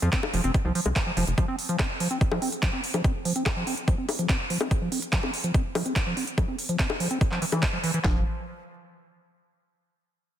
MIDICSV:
0, 0, Header, 1, 4, 480
1, 0, Start_track
1, 0, Tempo, 416667
1, 1586, Time_signature, 4, 2, 24, 8
1, 11973, End_track
2, 0, Start_track
2, 0, Title_t, "Acid bass"
2, 0, Program_c, 0, 38
2, 27, Note_on_c, 0, 53, 75
2, 117, Note_off_c, 0, 53, 0
2, 147, Note_on_c, 0, 60, 88
2, 237, Note_off_c, 0, 60, 0
2, 387, Note_on_c, 0, 53, 80
2, 477, Note_off_c, 0, 53, 0
2, 507, Note_on_c, 0, 60, 77
2, 597, Note_off_c, 0, 60, 0
2, 746, Note_on_c, 0, 53, 80
2, 836, Note_off_c, 0, 53, 0
2, 867, Note_on_c, 0, 53, 77
2, 927, Note_off_c, 0, 53, 0
2, 987, Note_on_c, 0, 56, 79
2, 1023, Note_off_c, 0, 56, 0
2, 1227, Note_on_c, 0, 53, 75
2, 1287, Note_off_c, 0, 53, 0
2, 1347, Note_on_c, 0, 53, 106
2, 1436, Note_off_c, 0, 53, 0
2, 1587, Note_on_c, 0, 53, 83
2, 1677, Note_off_c, 0, 53, 0
2, 1707, Note_on_c, 0, 60, 79
2, 1797, Note_off_c, 0, 60, 0
2, 1947, Note_on_c, 0, 53, 75
2, 2037, Note_off_c, 0, 53, 0
2, 2067, Note_on_c, 0, 60, 83
2, 2157, Note_off_c, 0, 60, 0
2, 2307, Note_on_c, 0, 53, 82
2, 2397, Note_off_c, 0, 53, 0
2, 2427, Note_on_c, 0, 60, 77
2, 2517, Note_off_c, 0, 60, 0
2, 2667, Note_on_c, 0, 53, 74
2, 2757, Note_off_c, 0, 53, 0
2, 2787, Note_on_c, 0, 60, 80
2, 2877, Note_off_c, 0, 60, 0
2, 3027, Note_on_c, 0, 53, 84
2, 3117, Note_off_c, 0, 53, 0
2, 3147, Note_on_c, 0, 60, 79
2, 3237, Note_off_c, 0, 60, 0
2, 3387, Note_on_c, 0, 53, 78
2, 3477, Note_off_c, 0, 53, 0
2, 3507, Note_on_c, 0, 60, 82
2, 3597, Note_off_c, 0, 60, 0
2, 3747, Note_on_c, 0, 53, 80
2, 3837, Note_off_c, 0, 53, 0
2, 3867, Note_on_c, 0, 60, 78
2, 3957, Note_off_c, 0, 60, 0
2, 4107, Note_on_c, 0, 53, 77
2, 4197, Note_off_c, 0, 53, 0
2, 4227, Note_on_c, 0, 60, 81
2, 4317, Note_off_c, 0, 60, 0
2, 4467, Note_on_c, 0, 53, 82
2, 4557, Note_off_c, 0, 53, 0
2, 4587, Note_on_c, 0, 60, 77
2, 4677, Note_off_c, 0, 60, 0
2, 4827, Note_on_c, 0, 53, 78
2, 4917, Note_off_c, 0, 53, 0
2, 4947, Note_on_c, 0, 60, 85
2, 5037, Note_off_c, 0, 60, 0
2, 5187, Note_on_c, 0, 53, 78
2, 5277, Note_off_c, 0, 53, 0
2, 5307, Note_on_c, 0, 60, 79
2, 5397, Note_off_c, 0, 60, 0
2, 5547, Note_on_c, 0, 53, 78
2, 5637, Note_off_c, 0, 53, 0
2, 5666, Note_on_c, 0, 60, 81
2, 5756, Note_off_c, 0, 60, 0
2, 5907, Note_on_c, 0, 53, 86
2, 5997, Note_off_c, 0, 53, 0
2, 6027, Note_on_c, 0, 60, 76
2, 6116, Note_off_c, 0, 60, 0
2, 6267, Note_on_c, 0, 53, 77
2, 6356, Note_off_c, 0, 53, 0
2, 6387, Note_on_c, 0, 60, 83
2, 6476, Note_off_c, 0, 60, 0
2, 6627, Note_on_c, 0, 53, 78
2, 6717, Note_off_c, 0, 53, 0
2, 6746, Note_on_c, 0, 60, 75
2, 6836, Note_off_c, 0, 60, 0
2, 6986, Note_on_c, 0, 53, 79
2, 7076, Note_off_c, 0, 53, 0
2, 7107, Note_on_c, 0, 60, 79
2, 7197, Note_off_c, 0, 60, 0
2, 7347, Note_on_c, 0, 53, 84
2, 7436, Note_off_c, 0, 53, 0
2, 7467, Note_on_c, 0, 60, 79
2, 7557, Note_off_c, 0, 60, 0
2, 7707, Note_on_c, 0, 53, 77
2, 7797, Note_off_c, 0, 53, 0
2, 7827, Note_on_c, 0, 60, 89
2, 7917, Note_off_c, 0, 60, 0
2, 8067, Note_on_c, 0, 53, 80
2, 8157, Note_off_c, 0, 53, 0
2, 8187, Note_on_c, 0, 60, 73
2, 8277, Note_off_c, 0, 60, 0
2, 8427, Note_on_c, 0, 53, 74
2, 8517, Note_off_c, 0, 53, 0
2, 8547, Note_on_c, 0, 52, 77
2, 8583, Note_off_c, 0, 52, 0
2, 8667, Note_on_c, 0, 52, 80
2, 8787, Note_on_c, 0, 53, 81
2, 8805, Note_off_c, 0, 52, 0
2, 8823, Note_off_c, 0, 53, 0
2, 8907, Note_on_c, 0, 53, 74
2, 8967, Note_off_c, 0, 53, 0
2, 9027, Note_on_c, 0, 52, 76
2, 9117, Note_off_c, 0, 52, 0
2, 9147, Note_on_c, 0, 52, 80
2, 9207, Note_off_c, 0, 52, 0
2, 9267, Note_on_c, 0, 53, 92
2, 9490, Note_off_c, 0, 53, 0
2, 11973, End_track
3, 0, Start_track
3, 0, Title_t, "Analog synth bass"
3, 0, Program_c, 1, 38
3, 27, Note_on_c, 1, 41, 80
3, 101, Note_off_c, 1, 41, 0
3, 387, Note_on_c, 1, 29, 97
3, 461, Note_off_c, 1, 29, 0
3, 507, Note_on_c, 1, 29, 82
3, 581, Note_off_c, 1, 29, 0
3, 747, Note_on_c, 1, 36, 81
3, 821, Note_off_c, 1, 36, 0
3, 987, Note_on_c, 1, 36, 83
3, 1061, Note_off_c, 1, 36, 0
3, 1347, Note_on_c, 1, 29, 96
3, 1421, Note_off_c, 1, 29, 0
3, 1467, Note_on_c, 1, 29, 83
3, 1541, Note_off_c, 1, 29, 0
3, 9267, Note_on_c, 1, 29, 100
3, 9490, Note_off_c, 1, 29, 0
3, 11973, End_track
4, 0, Start_track
4, 0, Title_t, "Drums"
4, 27, Note_on_c, 9, 42, 64
4, 142, Note_off_c, 9, 42, 0
4, 147, Note_on_c, 9, 36, 117
4, 147, Note_on_c, 9, 39, 118
4, 147, Note_on_c, 9, 42, 61
4, 262, Note_off_c, 9, 36, 0
4, 262, Note_off_c, 9, 39, 0
4, 262, Note_off_c, 9, 42, 0
4, 267, Note_on_c, 9, 60, 80
4, 382, Note_off_c, 9, 60, 0
4, 387, Note_on_c, 9, 46, 112
4, 502, Note_off_c, 9, 46, 0
4, 507, Note_on_c, 9, 42, 63
4, 622, Note_off_c, 9, 42, 0
4, 627, Note_on_c, 9, 36, 127
4, 627, Note_on_c, 9, 42, 66
4, 742, Note_off_c, 9, 36, 0
4, 742, Note_off_c, 9, 42, 0
4, 867, Note_on_c, 9, 46, 107
4, 982, Note_off_c, 9, 46, 0
4, 987, Note_on_c, 9, 42, 64
4, 987, Note_on_c, 9, 60, 38
4, 1102, Note_off_c, 9, 42, 0
4, 1102, Note_off_c, 9, 60, 0
4, 1107, Note_on_c, 9, 36, 127
4, 1107, Note_on_c, 9, 39, 116
4, 1107, Note_on_c, 9, 42, 65
4, 1222, Note_off_c, 9, 36, 0
4, 1222, Note_off_c, 9, 39, 0
4, 1222, Note_off_c, 9, 42, 0
4, 1347, Note_on_c, 9, 46, 112
4, 1462, Note_off_c, 9, 46, 0
4, 1467, Note_on_c, 9, 42, 63
4, 1582, Note_off_c, 9, 42, 0
4, 1587, Note_on_c, 9, 36, 116
4, 1587, Note_on_c, 9, 42, 63
4, 1702, Note_off_c, 9, 36, 0
4, 1702, Note_off_c, 9, 42, 0
4, 1827, Note_on_c, 9, 46, 106
4, 1942, Note_off_c, 9, 46, 0
4, 1947, Note_on_c, 9, 42, 66
4, 2062, Note_off_c, 9, 42, 0
4, 2067, Note_on_c, 9, 36, 119
4, 2067, Note_on_c, 9, 39, 107
4, 2067, Note_on_c, 9, 42, 63
4, 2067, Note_on_c, 9, 60, 40
4, 2182, Note_off_c, 9, 36, 0
4, 2182, Note_off_c, 9, 39, 0
4, 2182, Note_off_c, 9, 42, 0
4, 2182, Note_off_c, 9, 60, 0
4, 2307, Note_on_c, 9, 46, 112
4, 2422, Note_off_c, 9, 46, 0
4, 2427, Note_on_c, 9, 42, 61
4, 2542, Note_off_c, 9, 42, 0
4, 2547, Note_on_c, 9, 36, 122
4, 2547, Note_on_c, 9, 42, 62
4, 2662, Note_off_c, 9, 36, 0
4, 2663, Note_off_c, 9, 42, 0
4, 2667, Note_on_c, 9, 60, 74
4, 2783, Note_off_c, 9, 60, 0
4, 2787, Note_on_c, 9, 46, 101
4, 2903, Note_off_c, 9, 46, 0
4, 2908, Note_on_c, 9, 42, 66
4, 3023, Note_off_c, 9, 42, 0
4, 3027, Note_on_c, 9, 36, 122
4, 3028, Note_on_c, 9, 39, 112
4, 3028, Note_on_c, 9, 42, 64
4, 3142, Note_off_c, 9, 36, 0
4, 3143, Note_off_c, 9, 39, 0
4, 3143, Note_off_c, 9, 42, 0
4, 3268, Note_on_c, 9, 46, 105
4, 3383, Note_off_c, 9, 46, 0
4, 3387, Note_on_c, 9, 42, 65
4, 3387, Note_on_c, 9, 60, 40
4, 3503, Note_off_c, 9, 42, 0
4, 3503, Note_off_c, 9, 60, 0
4, 3507, Note_on_c, 9, 36, 109
4, 3507, Note_on_c, 9, 42, 64
4, 3622, Note_off_c, 9, 36, 0
4, 3623, Note_off_c, 9, 42, 0
4, 3747, Note_on_c, 9, 46, 102
4, 3863, Note_off_c, 9, 46, 0
4, 3867, Note_on_c, 9, 42, 68
4, 3982, Note_off_c, 9, 42, 0
4, 3987, Note_on_c, 9, 36, 118
4, 3987, Note_on_c, 9, 39, 110
4, 3987, Note_on_c, 9, 42, 63
4, 3987, Note_on_c, 9, 60, 82
4, 4102, Note_off_c, 9, 36, 0
4, 4102, Note_off_c, 9, 39, 0
4, 4102, Note_off_c, 9, 42, 0
4, 4102, Note_off_c, 9, 60, 0
4, 4227, Note_on_c, 9, 46, 104
4, 4342, Note_off_c, 9, 46, 0
4, 4347, Note_on_c, 9, 42, 62
4, 4462, Note_off_c, 9, 42, 0
4, 4467, Note_on_c, 9, 36, 118
4, 4467, Note_on_c, 9, 42, 64
4, 4582, Note_off_c, 9, 36, 0
4, 4582, Note_off_c, 9, 42, 0
4, 4707, Note_on_c, 9, 46, 104
4, 4707, Note_on_c, 9, 60, 41
4, 4822, Note_off_c, 9, 46, 0
4, 4822, Note_off_c, 9, 60, 0
4, 4827, Note_on_c, 9, 42, 66
4, 4942, Note_off_c, 9, 42, 0
4, 4947, Note_on_c, 9, 36, 117
4, 4947, Note_on_c, 9, 39, 116
4, 4947, Note_on_c, 9, 42, 67
4, 5062, Note_off_c, 9, 36, 0
4, 5062, Note_off_c, 9, 39, 0
4, 5062, Note_off_c, 9, 42, 0
4, 5187, Note_on_c, 9, 46, 101
4, 5302, Note_off_c, 9, 46, 0
4, 5307, Note_on_c, 9, 42, 66
4, 5307, Note_on_c, 9, 60, 82
4, 5422, Note_off_c, 9, 42, 0
4, 5422, Note_off_c, 9, 60, 0
4, 5427, Note_on_c, 9, 36, 111
4, 5427, Note_on_c, 9, 42, 65
4, 5542, Note_off_c, 9, 36, 0
4, 5542, Note_off_c, 9, 42, 0
4, 5667, Note_on_c, 9, 46, 103
4, 5782, Note_off_c, 9, 46, 0
4, 5787, Note_on_c, 9, 42, 72
4, 5902, Note_off_c, 9, 42, 0
4, 5907, Note_on_c, 9, 36, 109
4, 5907, Note_on_c, 9, 39, 115
4, 5907, Note_on_c, 9, 42, 65
4, 6022, Note_off_c, 9, 36, 0
4, 6022, Note_off_c, 9, 39, 0
4, 6022, Note_off_c, 9, 42, 0
4, 6027, Note_on_c, 9, 60, 41
4, 6142, Note_off_c, 9, 60, 0
4, 6146, Note_on_c, 9, 46, 102
4, 6262, Note_off_c, 9, 46, 0
4, 6267, Note_on_c, 9, 42, 68
4, 6382, Note_off_c, 9, 42, 0
4, 6387, Note_on_c, 9, 36, 118
4, 6387, Note_on_c, 9, 42, 69
4, 6502, Note_off_c, 9, 36, 0
4, 6502, Note_off_c, 9, 42, 0
4, 6627, Note_on_c, 9, 46, 98
4, 6627, Note_on_c, 9, 60, 85
4, 6742, Note_off_c, 9, 46, 0
4, 6742, Note_off_c, 9, 60, 0
4, 6747, Note_on_c, 9, 42, 71
4, 6862, Note_off_c, 9, 42, 0
4, 6867, Note_on_c, 9, 36, 116
4, 6867, Note_on_c, 9, 39, 116
4, 6867, Note_on_c, 9, 42, 68
4, 6982, Note_off_c, 9, 36, 0
4, 6982, Note_off_c, 9, 39, 0
4, 6982, Note_off_c, 9, 42, 0
4, 7107, Note_on_c, 9, 46, 99
4, 7222, Note_off_c, 9, 46, 0
4, 7227, Note_on_c, 9, 42, 65
4, 7342, Note_off_c, 9, 42, 0
4, 7347, Note_on_c, 9, 36, 113
4, 7347, Note_on_c, 9, 42, 68
4, 7347, Note_on_c, 9, 60, 41
4, 7462, Note_off_c, 9, 36, 0
4, 7462, Note_off_c, 9, 42, 0
4, 7462, Note_off_c, 9, 60, 0
4, 7587, Note_on_c, 9, 46, 103
4, 7702, Note_off_c, 9, 46, 0
4, 7707, Note_on_c, 9, 42, 73
4, 7822, Note_off_c, 9, 42, 0
4, 7827, Note_on_c, 9, 36, 115
4, 7827, Note_on_c, 9, 39, 118
4, 7827, Note_on_c, 9, 42, 65
4, 7942, Note_off_c, 9, 36, 0
4, 7942, Note_off_c, 9, 39, 0
4, 7942, Note_off_c, 9, 42, 0
4, 7947, Note_on_c, 9, 60, 81
4, 8062, Note_off_c, 9, 60, 0
4, 8067, Note_on_c, 9, 46, 104
4, 8182, Note_off_c, 9, 46, 0
4, 8187, Note_on_c, 9, 42, 66
4, 8302, Note_off_c, 9, 42, 0
4, 8307, Note_on_c, 9, 36, 117
4, 8307, Note_on_c, 9, 42, 68
4, 8422, Note_off_c, 9, 36, 0
4, 8422, Note_off_c, 9, 42, 0
4, 8427, Note_on_c, 9, 39, 36
4, 8542, Note_off_c, 9, 39, 0
4, 8547, Note_on_c, 9, 46, 104
4, 8662, Note_off_c, 9, 46, 0
4, 8667, Note_on_c, 9, 42, 69
4, 8667, Note_on_c, 9, 60, 41
4, 8782, Note_off_c, 9, 42, 0
4, 8782, Note_off_c, 9, 60, 0
4, 8787, Note_on_c, 9, 36, 119
4, 8787, Note_on_c, 9, 39, 127
4, 8787, Note_on_c, 9, 42, 70
4, 8902, Note_off_c, 9, 36, 0
4, 8902, Note_off_c, 9, 39, 0
4, 8902, Note_off_c, 9, 42, 0
4, 9027, Note_on_c, 9, 46, 103
4, 9142, Note_off_c, 9, 46, 0
4, 9147, Note_on_c, 9, 42, 69
4, 9262, Note_off_c, 9, 42, 0
4, 9267, Note_on_c, 9, 36, 106
4, 9267, Note_on_c, 9, 38, 102
4, 9267, Note_on_c, 9, 39, 84
4, 9382, Note_off_c, 9, 36, 0
4, 9382, Note_off_c, 9, 38, 0
4, 9382, Note_off_c, 9, 39, 0
4, 11973, End_track
0, 0, End_of_file